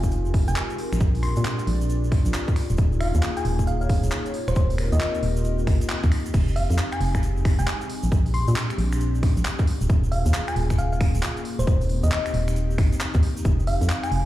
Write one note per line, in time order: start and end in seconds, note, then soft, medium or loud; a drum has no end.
0.00 0.45 F1 medium
0.00 2.53 G#3 medium
0.00 2.52 C4 medium
0.00 0.75 D#4 medium
0.00 3.29 F4 medium
0.00 2.52 G4 medium
0.00 3.19 A#4 medium
0.00 0.78 D#5 medium
0.00 kick medium
0.00 closed hi-hat soft
0.00 shaker medium
0.11 closed hi-hat medium
0.11 shaker medium
0.25 shaker soft
0.34 kick loud
0.34 open hi-hat loud
0.48 0.55 F1 medium
0.48 0.56 G#5 medium
0.48 closed hi-hat medium
0.48 shaker medium
0.56 clap loud
0.56 shaker medium
0.70 closed hi-hat medium
0.70 shaker soft
0.78 2.54 D4 medium
0.78 open hi-hat loud
0.93 1.00 A#1 medium
0.93 finger snap soft
0.93 closed hi-hat soft
0.93 shaker medium
1.01 1.34 A#1 loud
1.01 kick loud
1.01 closed hi-hat medium
1.15 open hi-hat medium
1.15 shaker soft
1.21 2.56 D5 medium
1.21 1.59 C6 medium
1.21 finger snap medium
1.21 open hi-hat loud
1.36 1.44 A#2 loud
1.36 closed hi-hat medium
1.36 shaker medium
1.45 clap loud
1.45 shaker medium
1.59 closed hi-hat medium
1.59 shaker soft
1.67 2.23 A#1 medium
1.67 open hi-hat loud
1.81 closed hi-hat soft
1.81 shaker medium
1.90 closed hi-hat medium
1.90 shaker medium
2.04 shaker soft
2.12 finger snap soft
2.12 kick loud
2.12 open hi-hat loud
2.25 2.33 A#1 medium
2.25 closed hi-hat medium
2.25 shaker medium
2.34 clap loud
2.34 shaker medium
2.48 kick loud
2.48 closed hi-hat medium
2.48 shaker soft
2.56 4.32 A#3 medium
2.56 4.32 C#4 medium
2.56 5.17 D#4 medium
2.56 4.32 F4 medium
2.56 4.32 G#4 medium
2.56 finger snap medium
2.56 open hi-hat loud
2.65 4.34 G#4 medium
2.70 2.77 D#1 medium
2.70 closed hi-hat soft
2.70 shaker medium
2.77 3.12 D#1 loud
2.77 kick loud
2.77 closed hi-hat medium
2.77 shaker medium
2.92 shaker soft
3.01 3.15 F5 medium
3.01 finger snap medium
3.01 open hi-hat loud
3.14 3.22 D#2 loud
3.14 closed hi-hat medium
3.14 shaker medium
3.22 clap loud
3.22 shaker medium
3.34 4.34 C#5 medium
3.34 3.45 G#5 medium
3.34 closed hi-hat medium
3.34 shaker soft
3.45 4.01 D#1 medium
3.45 open hi-hat loud
3.59 kick medium
3.59 closed hi-hat soft
3.59 shaker medium
3.67 3.76 F5 medium
3.67 closed hi-hat medium
3.67 shaker medium
3.81 3.86 F5 medium
3.81 shaker soft
3.89 kick loud
3.89 open hi-hat loud
4.03 4.11 D#1 medium
4.03 closed hi-hat medium
4.03 shaker medium
4.11 clap loud
4.11 shaker medium
4.26 closed hi-hat medium
4.26 shaker soft
4.34 6.32 A#3 medium
4.34 6.32 C4 medium
4.34 6.32 D#4 medium
4.34 6.34 F4 medium
4.34 6.32 G4 medium
4.34 open hi-hat loud
4.45 4.55 D#1 medium
4.45 6.34 A#4 medium
4.45 4.53 C5 medium
4.45 finger snap soft
4.45 shaker medium
4.55 4.90 D#1 loud
4.55 4.65 C5 medium
4.55 kick loud
4.55 closed hi-hat medium
4.55 shaker medium
4.70 open hi-hat medium
4.70 shaker soft
4.77 6.34 D#5 medium
4.77 finger snap medium
4.77 open hi-hat loud
4.92 5.00 D#2 loud
4.92 4.98 D#5 medium
4.92 closed hi-hat medium
4.92 shaker medium
5.00 5.10 D#5 medium
5.00 clap loud
5.00 shaker medium
5.15 closed hi-hat medium
5.15 shaker soft
5.23 5.67 D#1 medium
5.23 open hi-hat loud
5.36 closed hi-hat soft
5.36 shaker medium
5.44 closed hi-hat medium
5.44 shaker medium
5.59 shaker soft
5.67 5.80 G1 medium
5.67 finger snap medium
5.67 kick loud
5.67 open hi-hat loud
5.81 closed hi-hat medium
5.81 shaker medium
5.89 clap loud
5.89 shaker medium
6.03 6.11 D#2 loud
6.03 kick loud
6.03 closed hi-hat medium
6.03 shaker soft
6.12 finger snap medium
6.12 open hi-hat loud
6.26 closed hi-hat soft
6.26 shaker medium
6.34 6.68 F1 loud
6.34 9.64 G#3 medium
6.34 7.88 C4 medium
6.34 7.88 D#4 medium
6.34 7.88 G4 medium
6.34 kick loud
6.34 closed hi-hat medium
6.34 crash loud
6.34 shaker medium
6.48 shaker soft
6.56 6.70 F5 medium
6.56 open hi-hat loud
6.70 6.77 F2 loud
6.70 closed hi-hat medium
6.70 shaker medium
6.78 clap loud
6.92 7.01 G#5 medium
6.92 finger snap medium
6.92 closed hi-hat medium
6.92 shaker soft
7.01 7.56 F1 medium
7.01 open hi-hat loud
7.15 finger snap medium
7.15 kick medium
7.15 closed hi-hat soft
7.15 shaker medium
7.23 closed hi-hat medium
7.23 shaker medium
7.37 shaker soft
7.45 finger snap medium
7.45 kick loud
7.45 open hi-hat loud
7.59 7.66 F1 medium
7.59 7.67 G#5 medium
7.59 closed hi-hat medium
7.59 shaker medium
7.67 clap loud
7.67 shaker medium
7.81 closed hi-hat medium
7.81 shaker soft
7.89 9.66 C4 medium
7.89 9.66 D4 medium
7.89 9.65 G4 medium
7.89 open hi-hat loud
8.03 8.11 A#1 medium
8.03 closed hi-hat soft
8.03 shaker medium
8.12 8.45 A#1 loud
8.12 kick loud
8.12 closed hi-hat medium
8.12 shaker medium
8.26 open hi-hat medium
8.26 shaker soft
8.34 8.70 C6 medium
8.34 open hi-hat loud
8.48 8.55 A#2 loud
8.48 closed hi-hat medium
8.48 shaker medium
8.56 clap loud
8.56 shaker medium
8.70 finger snap medium
8.70 closed hi-hat medium
8.70 shaker soft
8.78 9.34 A#1 medium
8.78 open hi-hat loud
8.92 finger snap medium
8.92 closed hi-hat soft
8.92 shaker medium
9.00 closed hi-hat medium
9.00 shaker medium
9.15 shaker soft
9.23 finger snap medium
9.23 kick loud
9.23 open hi-hat loud
9.37 9.44 A#1 medium
9.37 closed hi-hat medium
9.37 shaker medium
9.45 clap loud
9.45 shaker medium
9.59 kick loud
9.59 closed hi-hat medium
9.59 shaker soft
9.67 13.41 A#3 medium
9.67 11.43 C#4 medium
9.67 11.43 F4 medium
9.67 11.43 G#4 medium
9.67 open hi-hat loud
9.81 9.88 D#1 medium
9.81 closed hi-hat soft
9.81 shaker medium
9.90 10.23 D#1 loud
9.90 kick loud
9.90 closed hi-hat medium
9.90 shaker medium
10.04 shaker soft
10.12 10.26 F5 medium
10.12 open hi-hat loud
10.26 10.33 D#2 loud
10.26 closed hi-hat medium
10.26 shaker medium
10.34 clap loud
10.34 shaker medium
10.48 10.56 G#5 medium
10.48 finger snap medium
10.48 closed hi-hat medium
10.48 shaker soft
10.56 11.12 D#1 medium
10.56 open hi-hat loud
10.70 finger snap medium
10.70 kick medium
10.70 closed hi-hat soft
10.70 shaker medium
10.78 10.87 F5 medium
10.78 closed hi-hat medium
10.78 shaker medium
10.93 10.98 F5 medium
10.93 shaker soft
11.01 finger snap medium
11.01 kick loud
11.01 open hi-hat loud
11.15 11.22 D#1 medium
11.15 closed hi-hat medium
11.15 shaker medium
11.23 clap loud
11.23 shaker medium
11.37 closed hi-hat medium
11.37 shaker soft
11.45 13.43 C4 medium
11.45 14.25 D#4 medium
11.45 14.25 G4 medium
11.45 open hi-hat loud
11.59 11.66 D#1 medium
11.59 11.64 C5 medium
11.59 closed hi-hat soft
11.59 shaker medium
11.67 12.01 D#1 loud
11.67 11.76 C5 medium
11.67 kick loud
11.67 closed hi-hat medium
11.67 shaker medium
11.81 open hi-hat medium
11.81 shaker soft
11.89 open hi-hat loud
12.03 12.11 D#2 loud
12.03 12.09 D#5 medium
12.03 closed hi-hat medium
12.03 shaker medium
12.12 12.21 D#5 medium
12.12 clap loud
12.12 shaker medium
12.26 finger snap medium
12.26 closed hi-hat medium
12.26 shaker soft
12.34 12.78 D#1 medium
12.34 open hi-hat loud
12.48 finger snap medium
12.48 closed hi-hat soft
12.48 shaker medium
12.56 closed hi-hat medium
12.56 shaker medium
12.71 shaker soft
12.78 12.91 G1 medium
12.78 finger snap medium
12.78 kick loud
12.78 open hi-hat loud
12.92 closed hi-hat medium
12.92 shaker medium
13.01 clap loud
13.01 shaker medium
13.14 13.22 D#2 loud
13.14 kick loud
13.14 closed hi-hat medium
13.14 shaker soft
13.23 open hi-hat loud
13.37 closed hi-hat soft
13.37 shaker medium
13.45 13.79 F1 loud
13.45 14.25 G#3 medium
13.45 14.25 C4 medium
13.45 kick loud
13.45 closed hi-hat medium
13.45 shaker medium
13.60 shaker soft
13.67 13.82 F5 loud
13.67 open hi-hat loud
13.81 13.88 F2 loud
13.81 closed hi-hat medium
13.81 shaker medium
13.89 clap loud
13.89 shaker medium
14.04 14.12 G#5 medium
14.04 finger snap medium
14.04 closed hi-hat medium
14.04 shaker soft
14.12 14.25 F1 medium
14.12 open hi-hat loud